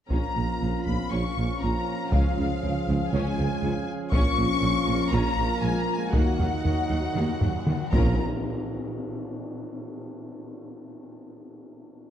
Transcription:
0.09 A#1 A#2 F3 A#3 C#4 F4 A#4 F5 A#5, taiko
0.36 A#1 A#2 A#3
0.61 A#1 A#2 F3
0.85 A#1 A#2 A#3 B3 B5, taiko
1.11 A#1 A#2 C#4 C#6
1.37 A#1 A#2 A#3
1.61 A#1 A#2 F3 A#3 A#5
2.11 C#2 C#3 F3 C#4 G#4 F5, taiko
2.38 C#2 C#3 G#3
2.63 C#2 C#3 F3
2.88 C#2 C#3 G#3
3.12 C#2 C#3 G#3 C#4 G#5
3.38 C#2 C#3 G#3
3.62 C#2 C#3 F3
4.12 A#1 A#2 F3 A#3 C#4 F4 A#4 C#6, taiko
4.37 A#1 A#2 A#3
4.62 A#1 A#2 F3
4.87 A#1 A#2 A#3
5.11 A#1 A#2 A#3 C#4 A#5
5.37 A#1 A#2 A#3
5.62 A#1 A#2 F3 G#3 G#5
5.79 A#3 A#5
5.96 G#3 G#5
6.12 D#2 D#3 F#3 A#3 D#4 F#4 D#5 F#5, taiko
6.39 D#2 D#3 F#3, taiko low
6.64 D#2 D#3, taiko low
6.90 D#2 D#3 F#3
7.15 D#2 D#3 A#3
7.41 D#2 D#3 F#3, taiko low-mid
7.67 D#2 D#3, taiko mid
7.91 A#1 A#2 F3 A#3 C#4 F4 A#4 A#5, taiko, tam-tam
7.95 F5

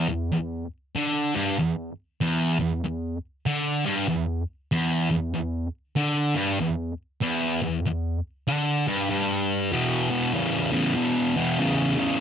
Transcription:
0.09 E2
0.32 E2
0.95 D3
1.35 G2
1.59 E2
2.21 E2
2.60 E2
2.84 E2
3.46 D3
3.85 G2
4.09 E2
4.72 E2
5.11 E2
5.34 E2
5.97 D3
6.35 G2
6.61 E2
7.22 E2
7.62 E2
7.86 E2
8.48 D3
8.88 G2
9.10 G2
9.72 E2 B2
10.10 E2 B2
10.34 E2 C#3
10.72 E2 C#3
10.96 E2 B2
11.36 E2 B2
11.59 E2 C#3
11.98 E2 C#3

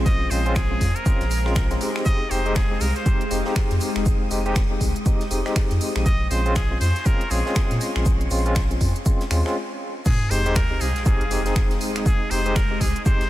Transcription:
Already playing: A#1 G#3 C4 C#4 F4 C5
0.06 D#5 A#5, kick, closed hi-hat, shaker
0.31 A#1 G#3 C4 C#4 F4 C5, open hi-hat, shaker
0.46 G#3 C4 C#4 F4, closed hi-hat
0.56 G#4, finger snap, kick, snare, closed hi-hat, shaker
0.71 G#3 C4 C#4 F4
0.81 F2, kick, open hi-hat, shaker
0.96 A#4, closed hi-hat
1.06 G#3 C4 C#4 F4, kick, closed hi-hat, shaker
1.20 A#1, snare, closed hi-hat
1.30 open hi-hat, shaker
1.46 G#3 C4 C#4 F4, finger snap, snare
1.56 finger snap, kick, snare, closed hi-hat, shaker
1.71 G#3 C4 C#4 F4, snare, closed hi-hat
1.81 G#3 C4 D#4 G4, open hi-hat, shaker
1.96 finger snap, snare
2.06 G#3 D#5 F5 D#6, kick, closed hi-hat, shaker
2.31 F1 G#3 C4 D#4 G4 C5, open hi-hat, shaker
2.46 G#3 C4 D#4 G4, closed hi-hat
2.56 G#4, finger snap, kick, snare, closed hi-hat, shaker
2.71 G#3 C4 D#4 G4
2.81 C2 A#4, open hi-hat, shaker
2.95 C5, snare, closed hi-hat
3.06 G#3 C4 D#4 G4, kick, closed hi-hat, shaker
3.21 closed hi-hat
3.31 F1 G#3 C4 D#4 G4, open hi-hat, shaker
3.45 G#3 C4 D#4 G4, snare
3.56 finger snap, kick, snare, closed hi-hat, shaker
3.70 F2, snare, closed hi-hat
3.80 open hi-hat, shaker
3.96 F1, finger snap, snare
4.06 D#5, kick, closed hi-hat, shaker
4.31 F1 G#3 C4 D#4 G4, open hi-hat, shaker
4.46 G#3 C4 D#4 G4, closed hi-hat
4.56 finger snap, kick, snare, closed hi-hat, shaker
4.71 G#3 C4 D#4 G4
4.81 C2, kick, open hi-hat, shaker
4.96 closed hi-hat
5.06 G#3 C4 D#4 G4, kick, closed hi-hat, shaker
5.20 snare, closed hi-hat
5.31 F1 G#3 C4 D#4 G4, open hi-hat, shaker
5.45 G#3 C4 D#4 G4, finger snap, snare
5.56 finger snap, kick, snare, closed hi-hat, shaker
5.70 F2, snare, closed hi-hat
5.81 open hi-hat, shaker
5.96 A#1, finger snap, snare
6.06 D#5 G#5 C6 C#6, kick, closed hi-hat, shaker
6.31 A#1 G#3 C4 C#4 F4 C5, open hi-hat, shaker
6.46 G#3 C4 C#4 F4, closed hi-hat
6.56 G#4, finger snap, kick, snare, closed hi-hat, shaker
6.71 G#3 C4 C#4 F4
6.81 F2 C5, open hi-hat, shaker
6.96 snare, closed hi-hat
7.06 G#3 C4 C#4 F4 A#4, kick, closed hi-hat, shaker
7.21 closed hi-hat
7.30 A#1 G#3 C4 C#4 F4 G#4, open hi-hat, shaker
7.45 G#3 C4 C#4 F4, snare
7.55 finger snap, kick, snare, closed hi-hat, shaker
7.71 A#2, snare, closed hi-hat
7.81 open hi-hat, shaker
7.96 A#1, finger snap, snare
8.05 kick, closed hi-hat, shaker
8.21 closed hi-hat
8.30 A#1 G#3 C4 C#4 F4, open hi-hat, shaker
8.46 G#3 C4 C#4 F4, closed hi-hat
8.55 finger snap, kick, snare, closed hi-hat, shaker
8.71 G#3 C4 C#4 F4, closed hi-hat
8.81 F2, kick, open hi-hat, shaker
8.96 closed hi-hat
9.06 G#3 C4 C#4 F4, kick, closed hi-hat, shaker
9.21 snare, closed hi-hat
9.31 D#2 G#3 C4 C#4 F4, finger snap, open hi-hat, shaker
9.45 G#3 C4 C#4 F4, finger snap, snare
10.05 G#3 G#4 F5 D#6, kick, closed hi-hat, crash, sub drop, shaker
10.31 F1 G#3 C4 D#4 G4 C5, open hi-hat, shaker
10.46 G#3 C4 D#4 G4, closed hi-hat
10.56 A#4, finger snap, kick, snare, closed hi-hat, shaker
10.71 G#3 C4 D#4 G4
10.80 C2 G#4, open hi-hat, shaker
10.96 snare, closed hi-hat
11.05 G#3 C4 D#4 G4 G#4, kick, closed hi-hat, shaker
11.21 F1, closed hi-hat
11.31 G#3 C4 D#4 G4, open hi-hat, shaker
11.45 G#3 C4 D#4 G#4, snare, closed hi-hat
11.56 finger snap, kick, snare, closed hi-hat, shaker
11.71 snare, closed hi-hat
11.81 open hi-hat, shaker
11.96 finger snap, snare, closed hi-hat
12.06 G#4 D#5, kick, closed hi-hat, shaker
12.31 F1 G#3 C4 D#4 G4 C5, open hi-hat, shaker
12.46 G#3 C4 D#4 G4, closed hi-hat
12.56 A#4, finger snap, kick, snare, closed hi-hat, shaker
12.71 G#3 C4 D#4 G4
12.81 C2 G#4, kick, open hi-hat, shaker
12.96 closed hi-hat
13.06 G#3 C4 D#4 G4 C5, kick, closed hi-hat, shaker
13.21 F1, snare, closed hi-hat

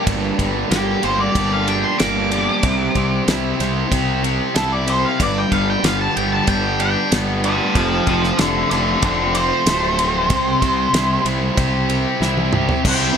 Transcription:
Already playing: G3 A#3 D4 G4
0.04 G1 G2, kick, ride
0.38 G1 D3 G3, kick, ride
0.69 G1 G3 A#3 G4, snare, ride
1.02 G1 A#3 G4 C5, ride
1.20 D5
1.34 G1 D4 G4, kick, ride
1.53 F5
1.66 G3 D4 G5, ride
1.84 C6
1.98 G1 A#3 D6, snare, ride
2.30 G3 D4, ride
2.63 C2 C3, kick, ride
2.95 C2 G3 C4, kick, ride
3.28 C2 C4 E4, snare, ride
3.60 C2 E4 C5, snare, ride
3.91 C2 G4 C5, kick, ride
4.23 C4 G4, ride
4.54 C2 E4 A4, snare, ride
4.72 D5
4.86 C4 G4 C5, ride
5.05 F5
5.19 G1 G2 D5, kick, ride
5.38 G5
5.50 G1 D3 G3 F5, kick, ride
5.70 G5
5.83 G1 G3 B3 F5, snare, ride
6.01 A5
6.15 G1 B3 G4 G5, ride
6.32 A5
6.47 G1 D4 G4 G5, kick, ride
6.80 G3 D4 G5, ride
7.10 G1 B3, snare, ride
7.43 G3 D4 D5 F5, ride
7.75 F1 F2 C5 F5, kick, ride
8.07 F1 C3 F3 C5 F5, kick, ride
8.24 snare
8.38 F1 F3 A3 A4 D5, snare, ride
8.71 F1 A3 F4 A4 D5, snare, ride
9.02 F1 C4 F4 A4 D5, kick, ride
9.35 F3 C4 C5, ride
9.66 D1 A3, snare, ride
9.98 F3 C4, ride
10.30 C2 C3, kick, ride
10.61 C2 G3 C4, kick, ride
10.93 C2 C4 E4, snare, ride
11.24 C2 E4 C5, ride
11.56 C2 G4 C5, kick, ride
11.88 C4 G4, ride
12.20 C2 E4, snare
12.37 high tom
12.52 C4 G4, mid tom
12.69 floor tom
12.83 C2 C3 G3 C4 E4 G4 C5, kick, crash
12.87 G4 C5 G5

